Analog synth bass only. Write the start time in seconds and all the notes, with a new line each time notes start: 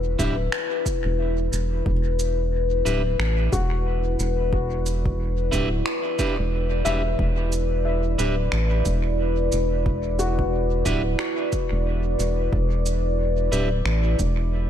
Already playing: E1
0.19 D1
1.05 E1
1.53 E1
1.86 E1
2.86 D1
3.19 A1
3.53 E1
4.19 E1
5.53 D1
6.39 E1
6.86 E1
7.19 E1
8.19 D1
8.52 A1
8.86 E1
9.53 E1
10.86 D1
11.72 E1
12.19 E1
12.53 E1
13.52 D1
13.85 A1
14.19 E1